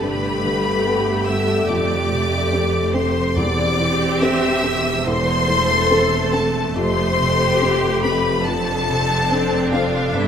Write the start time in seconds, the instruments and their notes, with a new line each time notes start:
Already playing: french horn section A3 G4, viola section A3 G4, harp A4 G5
0.01 double bass section G1, felt piano G2, harp G2, cello section G2, violin section B4 B5
0.23 harp D3
0.43 felt piano D3, harp B3
0.64 harp A4
0.85 felt piano B3 G4 A4, harp G5
1.27 harp B3, felt piano B3, violin section E5 E6
1.48 harp D3
1.68 double bass section F1, felt piano F2, cello section F2, harp F2, violin section D5 D6
1.90 harp C3
2.11 felt piano C3, harp C4
2.31 harp A4
2.52 felt piano C4 G4 A4, harp G5
2.72 harp A4
2.93 felt piano C4, harp C4, violin section C5 C6
3.15 harp C3
3.36 double bass section E1, harp E2, cello section E2, timpani E2, felt piano E2, viola section C4 G4, french horn section C4 G4, violin section D5 D6
3.57 harp E3
3.79 felt piano E3, harp C4
4.21 felt piano C4 G4 C5, violin section E5 E6
4.64 felt piano C4, harp C4
4.85 harp E3
5.06 felt piano E2, harp E2, viola section A3 A4, french horn section A3 A4, violin section C5 C6
5.28 harp E3
5.49 felt piano E3, harp C4
5.91 felt piano C4 A4 C5, harp A5
6.33 felt piano C4, violin section A4 A5
6.55 harp E3
6.75 double bass section F1, cello section F2, harp F2, felt piano F2, french horn section G4, viola section G4, violin section C5 C6
6.96 harp C3
7.19 felt piano C3, harp C4
7.40 harp A4
7.61 felt piano C4 G4 A4, harp G5
7.83 harp A4
8.03 harp C4, felt piano C4, violin section B4 B5
8.25 harp C3
8.46 harp F2, felt piano F2, viola section C4 D4, french horn section C4 A4, violin section A4 A5
8.68 harp C3
8.89 felt piano C3, harp C4
9.10 harp A4
9.31 felt piano C4 D4 A4, harp D5
9.52 harp A4
9.72 felt piano C4, harp C4, violin section F4 F5
9.94 harp C3
10.15 double bass section G1, felt piano G2, cello section G2, harp G2, french horn section B3, viola section B3, violin section E4 E5